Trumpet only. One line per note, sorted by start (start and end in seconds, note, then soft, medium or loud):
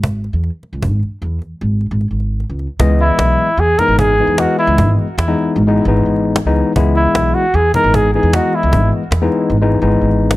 3.01 3.61 E4 medium
3.60 3.80 G#4 medium
3.79 3.99 A#4 medium
3.99 4.41 G#4 medium
4.39 4.58 F#4 medium
4.59 4.95 E4 medium
6.96 7.36 E4 medium
7.35 7.57 F#4 medium
7.55 7.74 G#4 medium
7.75 7.97 A#4 medium
7.95 8.13 G#4 medium
8.14 8.36 G#4 medium
8.34 8.57 F#4 medium
8.55 8.94 E4 medium